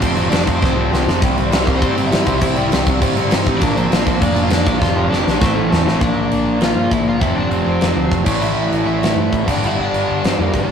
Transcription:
0.00 F1 F2 C3 F3 C4 C5, kick, crash
0.16 F2 C3 F3, crash
0.30 F1 F2 C3 F3 D4 D5, snare, crash
0.46 F1 F2 C3 F3 C4 C5, kick, crash
0.60 C2 F2 C3 F3, kick
0.64 snare
0.75 F2 C3 F3
0.91 C2 F2 C3 F3, snare
1.06 F1 F2 C3 F3, snare
1.22 C2 C3 G3 C4, kick, crash
1.37 C3 G3 C4, crash
1.50 C2 C3 G3 C4, snare, crash
1.64 C2 C3 G3 A#3 C4 A#4, kick, crash
1.75 C3 C4 C5
1.80 G1 G3 C4, kick, crash
1.96 C3 G3 C4, crash
2.07 C3 G3 E4 E5
2.11 G1 C4, snare, crash
2.26 C2 C3 G3 C4, kick, crash
2.38 C3 E4 E5, kick, crash
2.42 C2 G3 C4
2.56 C3 G3 C4, crash
2.72 C2 C3 G3 C4, snare, crash
2.87 C2 C3 G3 C4, kick, crash
3.01 G1 C3 G3 C4, kick, crash
3.17 C3 G3 C4, crash
3.31 G1 C3 G3 C4, snare, crash
3.46 A1 C3 G3 C4, kick, crash
3.58 A#1 D4 D5, kick, crash
3.62 A#2 F3 A#3
3.77 A#2 F3 A#3 C4 C5, crash
3.91 A#1 A#2 F3 A#3, snare, crash
4.05 A#1 A#2 F3 A#3, kick, crash
4.21 F1 A#2 F3 A#3 D4 D5, kick, crash
4.36 A#2 F3 A#3, crash
4.43 F4 F5
4.50 F2 A#2 F3 A#3 D4 D5, snare, crash
4.65 A#1 A#2 F3 A#3, kick, crash
4.79 F1 F2 C3 F3 F4 F5, kick
4.83 snare
4.95 F2 C3 F3
5.10 F1 F2 C3 F3 D4 D5, snare
5.24 A#1 F2 C3 F3, snare
5.39 A1 A2 E3 A3 C4 C5, kick, snare
5.55 A2 E3 A3 A4
5.70 E2 A2 E3 A3 C4 C5, snare
5.85 A1 A2 E3 A3, snare
5.99 A#1 A#2 F3 A#3 D4 D5, kick, crash
6.17 A#1
6.31 A#1, crash
6.46 A#1
6.61 A#1 F4 F5, snare, crash
6.76 G2
6.91 A#1 E4 E5, kick, crash
7.06 A#1 F4 F5
7.19 F1 F2 C3 F3 E4 E5, kick, crash
7.35 F1 D4 D5
7.49 F1 C4 C5, crash
7.63 F1 C4 C5
7.81 F1, snare, crash
7.95 D2
8.12 F1, kick, crash
8.25 A1 A2 E3 A3, kick, crash
8.41 A1 E4 E5, crash
8.56 A1
8.71 A1, crash
8.86 A1 E4 E5
9.02 A1, snare, crash
9.16 G2
9.33 A1, kick, crash
9.45 G1 G2 D3 G3 D4, kick, crash
9.51 D5
9.63 G1 E4 E5, crash
9.78 G1 D4 D5
9.93 G1, crash
10.09 G1
10.24 G1 C4, snare, crash
10.29 C5
10.38 F2 A#3 A#4
10.54 G1 D4 D5, kick, crash
10.67 A1

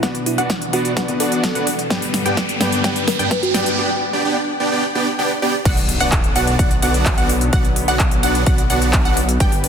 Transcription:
Already playing: B2 D4, riser
0.02 B2 E3 B3 D4 F#4 B4 D5 F#5, kick, snare, closed hi-hat
0.15 closed hi-hat
0.26 E4, open hi-hat
0.38 B2 B3 D4 F#4 B4 D5 F#5, closed hi-hat
0.50 kick, snare, closed hi-hat
0.62 closed hi-hat
0.73 B2 B3 D4 F#4 B4 D5 F#5, open hi-hat
0.85 F#4, closed hi-hat
0.97 B3 D4 F#4 D5 F#5, kick, snare, closed hi-hat
1.08 B2 B3 D4 F#4 B4, closed hi-hat
1.20 B3 D4 F#4 A4 D5 F#5, open hi-hat
1.32 closed hi-hat
1.44 kick, snare, closed hi-hat
1.55 B2 B3 D4 F#4 B4 D5 F#5, closed hi-hat
1.67 open hi-hat
1.79 closed hi-hat
1.90 G2 D3 B3 D4 G4 B4 D5 G5, kick, snare, closed hi-hat
2.02 open hi-hat
2.14 snare, open hi-hat
2.25 G2 B3 D4 G4 B4 D5 G5, closed hi-hat
2.37 kick, snare, closed hi-hat
2.49 closed hi-hat
2.60 G2 B3 D4 G4 B4 D5 G5, snare, open hi-hat
2.72 closed hi-hat
2.83 G2 B3 D4 G4 B4 D5 G5, kick, snare, closed hi-hat
2.96 closed hi-hat
3.08 B4, snare, open hi-hat
3.19 G2 B3 D4 G4 B4 D5 G5, closed hi-hat
3.31 B4, kick, snare, closed hi-hat
3.43 F#4, closed hi-hat
3.54 G2 B3 D4 G4 B4 D5 G5, snare, open hi-hat
3.66 closed hi-hat
3.78 B3 D4 G4 D5 G5
4.13 B3 D4 G4 D5 G5
4.25 B3 D4 G4 D5 G5
4.60 B3 D4 G4 D5 G5
4.72 B3 D4 G4 D5 G5
4.95 B3 D4 G4 D5 G5
5.19 B3 D4 G4 D5 G5
5.42 B3 D4 G4 D5 G5
5.65 B1 D3 F#3 B3 D4 F#4 D5 F#5, kick, closed hi-hat, crash, impact
5.77 open hi-hat
5.89 open hi-hat
6.00 B1 B3 D4 F#4 D5 F#5, closed hi-hat
6.12 kick, clap, closed hi-hat
6.24 closed hi-hat
6.36 B1 B3 D4 F#4 D5 F#5, open hi-hat
6.47 closed hi-hat
6.59 B1 B3 D4 F#4 D5 F#5, kick, closed hi-hat
6.71 closed hi-hat
6.82 B1 B3 D4 F#4 D5 F#5, open hi-hat
6.94 closed hi-hat
7.06 kick, clap, closed hi-hat
7.18 B1 B3 D4 F#4 D5 F#5, closed hi-hat
7.29 open hi-hat
7.41 closed hi-hat
7.53 B1 B3 D4 F#4 D5 F#5, kick, closed hi-hat
7.65 closed hi-hat
7.76 open hi-hat
7.88 B1 B3 D4 F#4 D5 F#5, closed hi-hat
7.99 kick, clap, closed hi-hat
8.11 closed hi-hat
8.23 B1 B3 D4 F#4 D5 F#5, open hi-hat
8.35 closed hi-hat
8.46 B1 B3 D4 F#4 D5 F#5, kick, closed hi-hat
8.58 closed hi-hat
8.70 B1 B3 D4 F#4 D5 F#5, open hi-hat
8.82 closed hi-hat
8.93 kick, clap, closed hi-hat
9.05 B1 B3 D4 F#4 D5 F#5, closed hi-hat
9.17 open hi-hat
9.29 closed hi-hat
9.40 G1 G3 B3 D4 G4 B4 D5 G5, kick, closed hi-hat
9.52 open hi-hat
9.64 open hi-hat

